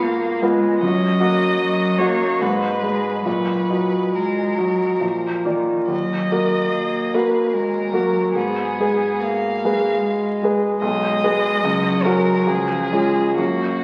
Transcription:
Already playing: grand piano G#2 B3 F4 B4, violin F5
0.02 cello A#3
0.42 cello G#3, grand piano B3 F4 B4
0.80 grand piano F#2, cello F#3, violin D#5
1.20 grand piano A#3 F#4 D#5
1.60 cello F#3
1.98 cello A#3, grand piano A#3 F#4 D#5, violin C#5
2.41 grand piano G#2, cello G#3, violin B4
2.83 grand piano G#3 D#4 D#5
3.24 grand piano A#2, cello F#3, violin B4
3.70 grand piano F#3 D#4 D#5
4.13 cello G#3, violin A#4
4.58 grand piano F#3 D#4 D#5, cello F#3
5.00 grand piano A#2, cello F3
5.45 cello D#3, grand piano A#3 F4 D5
5.88 grand piano D#2, cello F#3, violin D#5
6.31 grand piano A#3 F#4 A#4
6.73 cello A#3
7.14 grand piano A#3 F#4 A#4, violin B4
7.53 cello G#3, violin A#4
7.93 cello F#3, grand piano A#3 F#4 A#4
8.34 grand piano G#2, cello B3, violin G#4
8.80 grand piano G#3 G#4 B4
9.20 cello A#3, violin F5
9.64 grand piano G#3 G#4 B4
9.99 cello G#3
10.43 grand piano G#3 G#4 B4
10.79 grand piano B1, cello G#3, violin D#5
11.24 grand piano G#3 G#4 B4
11.61 grand piano C#2, cello F#3
12.04 grand piano C#4 F#4 A#4, violin A#4
12.47 grand piano C#2, cello F3, violin G#4
12.92 cello G#3, grand piano C#4 F4 G#4
13.37 grand piano F#2, cello A#3, violin F#4

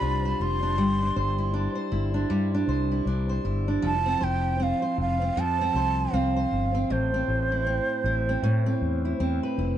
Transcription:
Already playing: steel-string acoustic guitar G3 F4 C5, bansuri B5
0.01 fretless electric bass C2, steel-string acoustic guitar D4
0.25 steel-string acoustic guitar C5
0.40 fretless electric bass F1, steel-string acoustic guitar F4, bansuri C6
0.63 steel-string acoustic guitar D4
0.78 fretless electric bass G1, steel-string acoustic guitar G3
1.02 steel-string acoustic guitar D4
1.16 fretless electric bass G1, steel-string acoustic guitar C5
1.38 steel-string acoustic guitar E4
1.54 steel-string acoustic guitar D4
1.75 steel-string acoustic guitar C5
1.92 fretless electric bass G1, steel-string acoustic guitar E4
2.14 steel-string acoustic guitar D4
2.30 fretless electric bass G2, steel-string acoustic guitar G3
2.54 steel-string acoustic guitar D4
2.68 fretless electric bass C2, steel-string acoustic guitar C5
2.91 steel-string acoustic guitar E4
3.06 fretless electric bass C2, steel-string acoustic guitar D4
3.29 steel-string acoustic guitar C5
3.45 fretless electric bass G1, steel-string acoustic guitar E4
3.68 steel-string acoustic guitar D4
3.82 fretless electric bass F1, steel-string acoustic guitar F3, bansuri A5
4.06 steel-string acoustic guitar C4
4.21 fretless electric bass F1, steel-string acoustic guitar C5, bansuri G5
4.60 steel-string acoustic guitar C4, bansuri F5
4.82 steel-string acoustic guitar C5
4.98 fretless electric bass F1, bansuri F5
5.22 steel-string acoustic guitar C4
5.37 fretless electric bass F2, steel-string acoustic guitar F3, bansuri A5
5.61 steel-string acoustic guitar C4
5.74 fretless electric bass C2, steel-string acoustic guitar C5
6.13 fretless electric bass C2, steel-string acoustic guitar C4, bansuri F5
6.36 steel-string acoustic guitar C5
6.52 fretless electric bass G1
6.75 steel-string acoustic guitar C4
6.90 fretless electric bass A1, steel-string acoustic guitar A2, bansuri C5
7.14 steel-string acoustic guitar C4
7.28 fretless electric bass A1
7.52 steel-string acoustic guitar E4
7.66 steel-string acoustic guitar C4
8.04 fretless electric bass A1, steel-string acoustic guitar E4
8.29 steel-string acoustic guitar C4
8.42 fretless electric bass A2, steel-string acoustic guitar A2
8.66 steel-string acoustic guitar C4
8.81 fretless electric bass E2
9.05 steel-string acoustic guitar E4
9.20 fretless electric bass E2, steel-string acoustic guitar C4
9.43 steel-string acoustic guitar B4
9.58 fretless electric bass F1, steel-string acoustic guitar E4

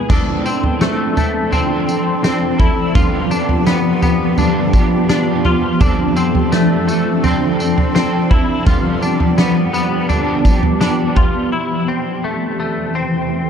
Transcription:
0.09 clean electric guitar D3 F3 C4 D4 A4, ambient pad F3 C4 A4 D5, kick, floor tom, crash, tambourine
0.44 clean electric guitar C4 D4 A4, tambourine
0.49 clean electric guitar C4
0.64 floor tom
0.79 clean electric guitar F3 A3 C4 D4, snare, tambourine
0.84 clean electric guitar A4
1.15 clean electric guitar A3 D4 A4, floor tom, tambourine
1.20 clean electric guitar C4
1.51 clean electric guitar D3 F3 C4 D4 A4, floor tom, tambourine
1.87 clean electric guitar D4 A4, tambourine
1.92 clean electric guitar C4
2.22 clean electric guitar F3 C4 D4, snare, tambourine
2.27 clean electric guitar A4
2.58 clean electric guitar D4 E4 A4, kick, floor tom
2.63 clean electric guitar C4
2.94 clean electric guitar G2 D3 F3 B3 F4 G4, ambient pad B3 G4, kick, floor tom, tambourine
3.30 clean electric guitar B3 D4 F4 G4, tambourine
3.35 clean electric guitar F3
3.49 floor tom
3.65 clean electric guitar F3 B3 F4, snare, tambourine
3.71 clean electric guitar G4
4.01 clean electric guitar B3 F4 G4, floor tom, tambourine
4.07 clean electric guitar F3
4.38 clean electric guitar G2 D3 F3 B3 D4 F4 G4, floor tom, tambourine
4.73 clean electric guitar B3 F4 G4, kick, tambourine
4.78 clean electric guitar F3
5.09 clean electric guitar F3 B3 D4 F4, snare, tambourine
5.14 clean electric guitar G4
5.44 clean electric guitar B3 F4 G4, floor tom
5.50 clean electric guitar F3
5.81 clean electric guitar D3 F3 C4 D4 A4, ambient pad C4 A4 D5, kick, floor tom, tambourine
6.16 clean electric guitar C4 D4 A4, tambourine
6.21 clean electric guitar C4
6.35 floor tom
6.52 clean electric guitar F3 A3 C4 D4, snare, tambourine
6.57 clean electric guitar A4
6.87 clean electric guitar A3 D4 A4, tambourine
6.92 clean electric guitar C4
7.23 clean electric guitar D3 F3 C4 D4 A4, floor tom, tambourine
7.59 clean electric guitar D4 A4, tambourine
7.64 clean electric guitar C4
7.78 floor tom
7.94 clean electric guitar F3 C4 D4, snare, tambourine
7.99 clean electric guitar A4
8.29 clean electric guitar D4 E4 A4, kick, floor tom
8.34 clean electric guitar C4
8.65 clean electric guitar G2 D3 F3 G3 B3 F4 G4, ambient pad B3 G4, kick, floor tom, tambourine
9.01 clean electric guitar G3 B3 D4 G4, tambourine
9.06 clean electric guitar F3
9.20 floor tom
9.37 clean electric guitar F3 G3 B3, snare, tambourine
9.42 clean electric guitar G4
9.72 clean electric guitar B3 G4, tambourine
9.76 clean electric guitar F3 G3
10.08 clean electric guitar G2 D3 F3 G3 B3 D4, floor tom, tambourine
10.12 clean electric guitar G4
10.44 clean electric guitar G3 B3 G4, kick, tambourine
10.49 clean electric guitar F3
10.63 floor tom
10.80 clean electric guitar F3 G3 B3 D4, snare, tambourine
10.85 clean electric guitar G4
11.15 clean electric guitar G3 B3 F4 G4, kick, floor tom
11.20 clean electric guitar F3
11.52 ambient pad E3 C4 A4 C5, clean electric guitar E4
11.88 clean electric guitar C4
12.24 clean electric guitar A3
12.60 clean electric guitar A3
12.95 clean electric guitar C4

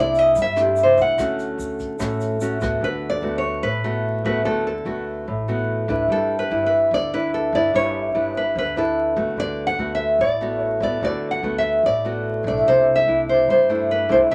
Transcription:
Already playing: upright bass C2, nylon-string guitar C3 A3 D4 E4
0.00 nylon-string guitar D5
0.15 nylon-string guitar D#5, closed hi-hat, shaker
0.35 upright bass G2, nylon-string guitar G3, kick, closed hi-hat, shaker
0.42 nylon-string guitar E5
0.56 nylon-string guitar A3 D4 E4, cross-stick, closed hi-hat, shaker
0.61 nylon-string guitar G4
0.76 closed hi-hat, shaker
0.83 nylon-string guitar C5
0.97 upright bass C2, kick, closed hi-hat, shaker
1.01 nylon-string guitar F#5
1.18 upright bass D2, nylon-string guitar D3 A3 C#4 F#4, kick, cross-stick, closed hi-hat, shaker
1.39 closed hi-hat, shaker
1.58 upright bass D2, closed hi-hat, shaker
1.79 kick, closed hi-hat, shaker
1.99 upright bass A1, nylon-string guitar A2 A3 C#4 F#4, kick, cross-stick, closed hi-hat, shaker
2.21 closed hi-hat, shaker
2.41 nylon-string guitar A3 C#4 F#4, closed hi-hat, shaker
2.61 upright bass D2, nylon-string guitar A3 B3 F#4, kick, cross-stick, closed hi-hat, shaker
2.81 upright bass D2, nylon-string guitar D3 B4
3.10 nylon-string guitar D5
3.22 upright bass D2, nylon-string guitar A3 B3 F#4
3.38 nylon-string guitar C#5
3.62 upright bass A1, nylon-string guitar A2 B4
3.84 nylon-string guitar A3 B3 F#4
4.25 upright bass D2, nylon-string guitar A3 B3 F#4 B4
4.45 upright bass D2, nylon-string guitar D3 A3 B3 F#4 A4
4.67 nylon-string guitar A4
4.85 upright bass D2, nylon-string guitar A3 B3 F#4
5.28 upright bass A1, nylon-string guitar A2
5.48 nylon-string guitar A3 B3 F#4
5.88 upright bass D2, nylon-string guitar D4 E4 B4
6.08 upright bass G1, nylon-string guitar G3 A4
6.39 nylon-string guitar B4
6.50 upright bass G1, nylon-string guitar D4 E4 B4
6.66 nylon-string guitar B4
6.91 upright bass D2, nylon-string guitar D3 D5
7.13 nylon-string guitar D4 E4 B4
7.34 nylon-string guitar A4
7.52 upright bass G1, nylon-string guitar D4 E4 B4 D5
7.74 upright bass G1, nylon-string guitar G3 D4 E4 B4 C#5
8.14 upright bass G1, nylon-string guitar D4 E4 B4
8.37 nylon-string guitar B4
8.55 upright bass D2, nylon-string guitar D3 B4
8.76 nylon-string guitar D4 E4 A4 B4
9.16 upright bass C#2, nylon-string guitar A3 B3 F#4
9.36 upright bass D2, nylon-string guitar D3 D5
9.67 nylon-string guitar F#5
9.78 upright bass D2, nylon-string guitar A3 B3 F#4
9.95 nylon-string guitar E5
10.19 upright bass A1, nylon-string guitar A2 D5
10.41 nylon-string guitar A3 B3 F#4
10.62 nylon-string guitar C#5
10.80 upright bass D2, nylon-string guitar A3 B3 F#4 D5
11.01 upright bass D2, nylon-string guitar D3 A3 B3 F#4 D5
11.31 nylon-string guitar F#5
11.42 upright bass D2, nylon-string guitar A3 B3 F#4
11.58 nylon-string guitar E5
11.83 upright bass A1, nylon-string guitar A2 D5
12.05 nylon-string guitar A3 B3 F#4
12.44 upright bass B1, nylon-string guitar A3 D4 E4
12.48 nylon-string guitar D5
12.65 upright bass C2, nylon-string guitar C3 C5
12.96 nylon-string guitar E5
13.06 upright bass C2, nylon-string guitar A3 D4 E4
13.29 nylon-string guitar C5
13.47 upright bass G2, nylon-string guitar G3 C5
13.69 nylon-string guitar A3 D4 E4
13.91 nylon-string guitar B4
14.09 upright bass C2, nylon-string guitar A3 D4 E4 C5
14.30 upright bass C2, nylon-string guitar C3 A3 E4 E5

